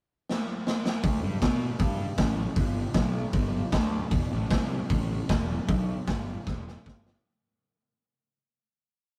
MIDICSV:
0, 0, Header, 1, 3, 480
1, 0, Start_track
1, 0, Tempo, 383387
1, 1301, Time_signature, 4, 2, 24, 8
1, 5149, Tempo, 392157
1, 11354, End_track
2, 0, Start_track
2, 0, Title_t, "Picked electric bass"
2, 0, Program_c, 0, 34
2, 1299, Note_on_c, 0, 38, 86
2, 1466, Note_off_c, 0, 38, 0
2, 1535, Note_on_c, 0, 43, 95
2, 1703, Note_off_c, 0, 43, 0
2, 1777, Note_on_c, 0, 47, 86
2, 2111, Note_off_c, 0, 47, 0
2, 2245, Note_on_c, 0, 43, 88
2, 2583, Note_off_c, 0, 43, 0
2, 2732, Note_on_c, 0, 33, 83
2, 3068, Note_off_c, 0, 33, 0
2, 3203, Note_on_c, 0, 31, 87
2, 3543, Note_off_c, 0, 31, 0
2, 3689, Note_on_c, 0, 35, 89
2, 4029, Note_off_c, 0, 35, 0
2, 4174, Note_on_c, 0, 31, 100
2, 4514, Note_off_c, 0, 31, 0
2, 4665, Note_on_c, 0, 38, 91
2, 5004, Note_off_c, 0, 38, 0
2, 5147, Note_on_c, 0, 28, 82
2, 5315, Note_off_c, 0, 28, 0
2, 5400, Note_on_c, 0, 33, 98
2, 5563, Note_off_c, 0, 33, 0
2, 5630, Note_on_c, 0, 36, 83
2, 5963, Note_off_c, 0, 36, 0
2, 6109, Note_on_c, 0, 33, 92
2, 6442, Note_off_c, 0, 33, 0
2, 6598, Note_on_c, 0, 28, 86
2, 6928, Note_off_c, 0, 28, 0
2, 7069, Note_on_c, 0, 35, 96
2, 7402, Note_off_c, 0, 35, 0
2, 7551, Note_on_c, 0, 31, 87
2, 7884, Note_off_c, 0, 31, 0
2, 8038, Note_on_c, 0, 28, 96
2, 8369, Note_off_c, 0, 28, 0
2, 8518, Note_on_c, 0, 31, 86
2, 8849, Note_off_c, 0, 31, 0
2, 11354, End_track
3, 0, Start_track
3, 0, Title_t, "Drums"
3, 369, Note_on_c, 9, 38, 71
3, 494, Note_off_c, 9, 38, 0
3, 837, Note_on_c, 9, 38, 84
3, 963, Note_off_c, 9, 38, 0
3, 1071, Note_on_c, 9, 38, 91
3, 1196, Note_off_c, 9, 38, 0
3, 1290, Note_on_c, 9, 46, 64
3, 1298, Note_on_c, 9, 36, 112
3, 1415, Note_off_c, 9, 46, 0
3, 1423, Note_off_c, 9, 36, 0
3, 1774, Note_on_c, 9, 46, 58
3, 1776, Note_on_c, 9, 36, 113
3, 1784, Note_on_c, 9, 38, 111
3, 1899, Note_off_c, 9, 46, 0
3, 1901, Note_off_c, 9, 36, 0
3, 1909, Note_off_c, 9, 38, 0
3, 2240, Note_on_c, 9, 46, 67
3, 2251, Note_on_c, 9, 36, 112
3, 2366, Note_off_c, 9, 46, 0
3, 2376, Note_off_c, 9, 36, 0
3, 2724, Note_on_c, 9, 46, 64
3, 2728, Note_on_c, 9, 36, 107
3, 2734, Note_on_c, 9, 38, 104
3, 2849, Note_off_c, 9, 46, 0
3, 2853, Note_off_c, 9, 36, 0
3, 2859, Note_off_c, 9, 38, 0
3, 3206, Note_on_c, 9, 46, 62
3, 3208, Note_on_c, 9, 36, 118
3, 3331, Note_off_c, 9, 46, 0
3, 3333, Note_off_c, 9, 36, 0
3, 3676, Note_on_c, 9, 46, 56
3, 3686, Note_on_c, 9, 38, 105
3, 3687, Note_on_c, 9, 36, 108
3, 3801, Note_off_c, 9, 46, 0
3, 3811, Note_off_c, 9, 38, 0
3, 3812, Note_off_c, 9, 36, 0
3, 4166, Note_on_c, 9, 46, 60
3, 4172, Note_on_c, 9, 36, 107
3, 4291, Note_off_c, 9, 46, 0
3, 4298, Note_off_c, 9, 36, 0
3, 4657, Note_on_c, 9, 46, 55
3, 4662, Note_on_c, 9, 36, 104
3, 4667, Note_on_c, 9, 38, 103
3, 4782, Note_off_c, 9, 46, 0
3, 4788, Note_off_c, 9, 36, 0
3, 4792, Note_off_c, 9, 38, 0
3, 5142, Note_on_c, 9, 46, 61
3, 5149, Note_on_c, 9, 36, 109
3, 5265, Note_off_c, 9, 46, 0
3, 5271, Note_off_c, 9, 36, 0
3, 5625, Note_on_c, 9, 46, 58
3, 5630, Note_on_c, 9, 36, 105
3, 5635, Note_on_c, 9, 38, 107
3, 5748, Note_off_c, 9, 46, 0
3, 5753, Note_off_c, 9, 36, 0
3, 5757, Note_off_c, 9, 38, 0
3, 6104, Note_on_c, 9, 46, 62
3, 6113, Note_on_c, 9, 36, 108
3, 6226, Note_off_c, 9, 46, 0
3, 6236, Note_off_c, 9, 36, 0
3, 6589, Note_on_c, 9, 46, 59
3, 6594, Note_on_c, 9, 36, 108
3, 6599, Note_on_c, 9, 38, 107
3, 6712, Note_off_c, 9, 46, 0
3, 6717, Note_off_c, 9, 36, 0
3, 6721, Note_off_c, 9, 38, 0
3, 7075, Note_on_c, 9, 36, 115
3, 7075, Note_on_c, 9, 46, 64
3, 7197, Note_off_c, 9, 36, 0
3, 7198, Note_off_c, 9, 46, 0
3, 7547, Note_on_c, 9, 46, 59
3, 7552, Note_on_c, 9, 36, 110
3, 7556, Note_on_c, 9, 38, 109
3, 7669, Note_off_c, 9, 46, 0
3, 7674, Note_off_c, 9, 36, 0
3, 7679, Note_off_c, 9, 38, 0
3, 8032, Note_on_c, 9, 36, 112
3, 8036, Note_on_c, 9, 38, 67
3, 8155, Note_off_c, 9, 36, 0
3, 8159, Note_off_c, 9, 38, 0
3, 8293, Note_on_c, 9, 38, 71
3, 8416, Note_off_c, 9, 38, 0
3, 8514, Note_on_c, 9, 36, 112
3, 8535, Note_on_c, 9, 38, 89
3, 8636, Note_off_c, 9, 36, 0
3, 8658, Note_off_c, 9, 38, 0
3, 8764, Note_on_c, 9, 38, 84
3, 8886, Note_off_c, 9, 38, 0
3, 11354, End_track
0, 0, End_of_file